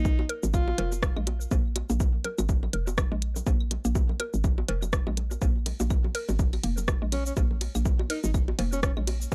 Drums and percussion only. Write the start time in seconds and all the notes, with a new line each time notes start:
0.05 kick, low bongo, cabasa
0.19 high bongo
0.29 closed hi-hat
0.43 high bongo, low bongo, cabasa
0.54 kick, cabasa, claves
0.68 high bongo
0.78 closed hi-hat, cowbell, low bongo
0.92 high bongo, cabasa
1.03 kick, cross-stick, cabasa
1.17 low bongo, claves
1.27 closed hi-hat, high bongo
1.41 cabasa
1.51 kick, cowbell, high bongo, low bongo, cabasa
1.76 closed hi-hat, high bongo, claves
1.90 low bongo, cabasa
2.00 kick, high bongo, cabasa
2.24 closed hi-hat, low bongo
2.38 high bongo, cabasa, claves
2.49 kick, cabasa
2.63 high bongo, low bongo
2.73 closed hi-hat
2.87 high bongo, cabasa
2.98 kick, cross-stick, low bongo, cabasa, claves
3.12 high bongo
3.22 closed hi-hat
3.36 low bongo, cabasa
3.47 kick, cowbell, high bongo, cabasa
3.60 claves
3.71 closed hi-hat, high bongo, low bongo
3.85 cabasa
3.95 kick, high bongo, cabasa
4.09 low bongo
4.20 closed hi-hat, high bongo, claves
4.34 cabasa
4.44 kick, low bongo, cabasa
4.58 high bongo
4.68 closed hi-hat, cowbell
4.82 high bongo, low bongo, cabasa, claves
4.93 kick, cross-stick, cabasa
5.07 high bongo
5.17 closed hi-hat, low bongo
5.31 high bongo, cabasa
5.42 kick, cowbell, high bongo, cabasa
5.66 closed hi-hat, ride, low bongo
5.80 high bongo, cabasa
5.90 kick, cabasa, claves
6.04 high bongo, low bongo
6.15 closed hi-hat, ride
6.29 high bongo, cabasa
6.39 kick, low bongo, cabasa
6.53 ride, high bongo, claves
6.64 closed hi-hat, ride
6.77 low bongo, cabasa
6.88 kick, cross-stick, high bongo, cabasa
7.12 closed hi-hat, ride, high bongo, low bongo, claves
7.26 cabasa
7.37 kick, cowbell, high bongo, cabasa
7.51 low bongo
7.61 closed hi-hat, ride, high bongo
7.75 cabasa, claves
7.85 kick, low bongo, cabasa
7.99 high bongo
8.10 closed hi-hat, ride
8.24 high bongo, low bongo, cabasa
8.34 kick, cabasa, claves
8.48 high bongo
8.59 closed hi-hat, ride, cowbell, low bongo
8.73 high bongo, cabasa
8.83 kick, cross-stick, cabasa
8.97 low bongo, claves
9.07 closed hi-hat, ride, high bongo
9.21 cabasa
9.32 kick, cowbell, high bongo, low bongo